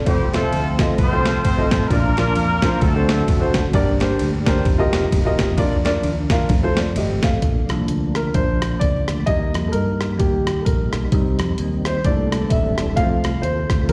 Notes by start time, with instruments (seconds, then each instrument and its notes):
0.05 fingered electric bass F1, tonewheel organ F3 A3 C4, horn section G3 C4 G4, upright piano C4 F4 A4 C5, kick, ride
0.33 horn section A3 C4 F4 A4, upright piano C4 F4 A4 C5, snare, ride
0.52 fingered electric bass D2, ride
0.79 upright piano C4 F4 A4 D#5, kick, snare, ride
0.98 fingered electric bass C2, horn section C4 F4 A4 C5, kick, ride
1.11 upright piano C4 F4 A4 C5
1.26 snare, ride
1.43 fingered electric bass G#1, horn section C4 C5, kick, ride
1.57 upright piano C4 F4 A4 D#5
1.69 fingered electric bass A1, horn section C4 C5, kick, snare, ride
1.88 fingered electric bass A#1, upright piano A#2 D4 F4 A#4 D5, horn section A#3 D4 F4 A#4, tonewheel organ A#3 D4, kick, ride
2.16 upright piano D4 F4 A#4 D5, snare, ride
2.35 fingered electric bass F2, ride
2.62 upright piano D4 F4 A#4 C5, kick, snare, ride
2.81 fingered electric bass D2, tonewheel organ D3 F#3 A3 C4 F#4, upright piano D3, horn section A3 C4 F#4 A4, kick, ride
2.94 upright piano D4 F#4 A4 C5
3.07 horn section A3 C4 F#4 A4, snare, ride
3.28 fingered electric bass F1, kick, ride
3.40 upright piano D4 F#4 A4 C5
3.54 fingered electric bass F#1, kick, snare, ride
3.73 fingered electric bass G1, upright piano G2 D4 G4 A#4 D5, tonewheel organ A#3 D4 G4, kick, ride
4.00 upright piano D4 G4 A#4 C5, snare, ride
4.19 fingered electric bass D2, ride
4.45 upright piano D4 G4 A#4 C5, kick, snare, ride
4.65 fingered electric bass F1, tonewheel organ F3 C4 D#4, kick, ride
4.78 upright piano F4 G4 A#4 D#5
4.93 snare, ride
5.12 fingered electric bass D#1, kick, ride
5.25 upright piano F4 G4 A#4 D#5
5.39 fingered electric bass E1, kick, snare, ride
5.57 fingered electric bass F2, upright piano D4 F4 A#4 D5, tonewheel organ D4, kick, ride
5.84 upright piano D4 F4 A#4 D5, snare, ride
6.03 fingered electric bass D#2, ride
6.30 upright piano D4 F4 A#4 F5, kick, snare, ride
6.49 fingered electric bass F2, tonewheel organ A3 C4, kick, ride
6.63 upright piano C4 F4 A4 C5
6.77 upright piano F4 D5, snare, ride
6.96 fingered electric bass G#1, upright piano G4 D#5, ride
7.23 fingered electric bass A1, upright piano A4 F5, kick, snare, ride
7.42 fingered electric bass A#1, tonewheel organ F3 A#3 D4, kick, closed hi-hat
7.69 fingered electric bass C2, upright piano F3 A#3 D4, cross-stick, closed hi-hat
7.88 fingered electric bass D2, closed hi-hat
8.15 upright piano A#4, cross-stick, closed hi-hat
8.34 fingered electric bass A#1, upright piano F3 A#3 D4 C5, kick, closed hi-hat
8.62 cross-stick, closed hi-hat
8.79 fingered electric bass C#2, upright piano D5, kick, closed hi-hat
9.08 fingered electric bass D2, cross-stick, closed hi-hat
9.26 fingered electric bass D#2, tonewheel organ G3 D#4, upright piano G3 A#3 D#4 D#5, kick, closed hi-hat
9.54 fingered electric bass F2, cross-stick, closed hi-hat
9.68 upright piano A4
9.72 fingered electric bass G2, upright piano A#4, closed hi-hat
10.01 cross-stick, closed hi-hat
10.19 fingered electric bass D#2, upright piano G4, kick, closed hi-hat
10.47 cross-stick, closed hi-hat
10.62 upright piano A4 A#4
10.66 fingered electric bass A#1, kick, closed hi-hat
10.93 fingered electric bass B1, cross-stick, closed hi-hat
11.12 fingered electric bass C2, upright piano G3 C4 D#4, tonewheel organ G3 C4, kick, closed hi-hat
11.39 fingered electric bass F2, cross-stick, closed hi-hat
11.58 fingered electric bass D#2, closed hi-hat
11.85 upright piano C5, cross-stick, closed hi-hat
12.04 fingered electric bass C2, upright piano E3 A3 A#3 D4 D5, tonewheel organ E3 G3 C4 D4 A4, kick, closed hi-hat
12.32 cross-stick, closed hi-hat
12.50 fingered electric bass D#1, upright piano E5, kick, closed hi-hat
12.78 fingered electric bass E1, cross-stick, closed hi-hat
12.96 fingered electric bass F2, upright piano F3 A3 C4 F5, tonewheel organ C4 F4, kick, closed hi-hat
13.24 fingered electric bass C2, cross-stick, closed hi-hat
13.42 fingered electric bass D#2, upright piano C5, closed hi-hat
13.70 fingered electric bass D2, kick, cross-stick, closed hi-hat
13.89 fingered electric bass C2, tonewheel organ G#3 E4 G4 A#4, upright piano A#4, kick, closed hi-hat